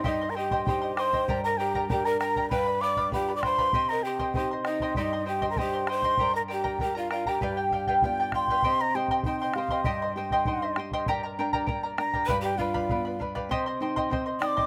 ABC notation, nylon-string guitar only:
X:1
M:2/4
L:1/8
Q:1/4=98
K:Cdor
V:1 name="Nylon-string guitar"
G,,2 [EGc]2 | G,,2 [DGB]2 | G,,2 [FGd]2 | C,2 [EGc]2 |
G,,2 [EGc]2 | G,,2 [DGB]2 | G,,2 [=B,FG]2 | C, G E G |
G,, G E G | G,, D B, D | G,, D =B, D | C, E C E |]